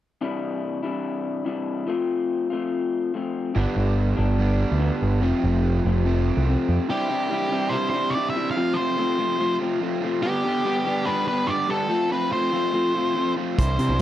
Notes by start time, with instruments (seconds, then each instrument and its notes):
0.21 clean electric guitar C3 E3 G3 D4 E4
0.82 clean electric guitar C3 E3 G3 D4 E4
1.45 clean electric guitar C3 E3 G3 D4 E4
1.87 clean electric guitar F3 A3 C4 F4
2.50 clean electric guitar F3 A3 C4 F4
3.14 clean electric guitar F3 A3 C4 F4
3.54 picked electric bass G1, clean electric guitar G2 D3 G3 B3 D4
3.76 picked electric bass G1
4.16 picked electric bass G1, clean electric guitar G2 D3 G3 B3 D4
4.39 overdriven electric guitar G2 D3 G3 B3 D4
4.72 picked electric bass D2
4.79 clean electric guitar G2 D3 G3 B3 D4
5.02 picked electric bass G1
5.21 picked electric bass F1, clean electric guitar F2 C3 F3 A3 C4
5.44 picked electric bass F1
5.85 picked electric bass F1, clean electric guitar F2 C3 F3 A3 C4
6.05 overdriven electric guitar F2 C3 F3 A3 C4
6.37 picked electric bass C2
6.46 clean electric guitar F2 C3 F3 A3 C4
6.69 picked electric bass F2
6.88 clean electric guitar C3 E3 G3 D4 E4, overdriven electric guitar C4, lead electric guitar G4
7.10 clean electric guitar C3 E3 G3 D4 E4, overdriven electric guitar C4
7.31 clean electric guitar C3 E3 G3 D4 E4, overdriven electric guitar C4
7.50 clean electric guitar C3 E3 G3 D4 E4, overdriven electric guitar C4
7.69 clean electric guitar C3 E3 G3 D4 E4, lead electric guitar C5
7.74 overdriven electric guitar C4
7.90 clean electric guitar C3 E3 G3, lead electric guitar C5
7.94 overdriven electric guitar C4, clean electric guitar D4 E4
8.10 lead electric guitar D5
8.15 clean electric guitar C3 E3 G3 D4 E4, overdriven electric guitar C4
8.30 lead electric guitar E5
8.35 clean electric guitar C3 E3 G3 D4 E4, overdriven electric guitar C4
8.51 lead electric guitar F5
8.56 overdriven electric guitar F2 C3, clean electric guitar F3 A3 C4 F4
8.74 overdriven electric guitar F2 C3, clean electric guitar F3 A3, lead electric guitar C5
8.78 clean electric guitar C4 F4
8.97 overdriven electric guitar F2 C3, clean electric guitar F3 A3 C4 F4
9.18 overdriven electric guitar F2 C3, clean electric guitar F3 A3 C4 F4
9.39 overdriven electric guitar F2 C3, clean electric guitar F3 A3 C4 F4
9.58 overdriven electric guitar F2 C3, clean electric guitar F3 A3
9.62 clean electric guitar C4 F4
9.80 overdriven electric guitar F2 C3, clean electric guitar F3 A3 C4 F4
10.00 overdriven electric guitar F2 C3, clean electric guitar F3 A3
10.05 clean electric guitar C4 F4
10.23 overdriven electric guitar G2 D3, clean electric guitar G3 B3 D4 G4, lead electric guitar G4
10.43 overdriven electric guitar G2 D3, clean electric guitar G3 B3 D4 G4
10.64 overdriven electric guitar G2 D3, clean electric guitar G3 B3 D4 G4
10.85 overdriven electric guitar G2 D3, clean electric guitar G3 B3 D4 G4
11.06 overdriven electric guitar G2 D3, clean electric guitar G3 B3 D4 G4, lead electric guitar B4
11.27 overdriven electric guitar G2 D3, clean electric guitar G3 B3 D4 G4, lead electric guitar B4
11.47 overdriven electric guitar G2 D3, clean electric guitar G3 B3 D4 G4, lead electric guitar D5
11.67 overdriven electric guitar G2 D3, clean electric guitar G3 B3 D4 G4, lead electric guitar A4
11.89 clean electric guitar F3 A3 C4 F4
12.11 clean electric guitar F3 A3 C4 F4, lead electric guitar B4
12.31 clean electric guitar F3 A3 C4 F4, lead electric guitar C5
12.52 clean electric guitar F3 A3 C4 F4
12.73 clean electric guitar F3 A3 C4 F4
12.95 clean electric guitar F3 A3 C4 F4
13.15 clean electric guitar F3 A3 C4 F4
13.36 clean electric guitar F3 A3 C4 F4
13.59 picked electric bass C2, clean electric guitar C3 E3 G3 D4 E4, overdriven electric guitar C4, lead electric guitar C5, kick, closed hi-hat
13.78 clean electric guitar C3 E3 G3 D4 E4, picked electric bass C3, overdriven electric guitar C4, closed hi-hat
13.89 picked electric bass C2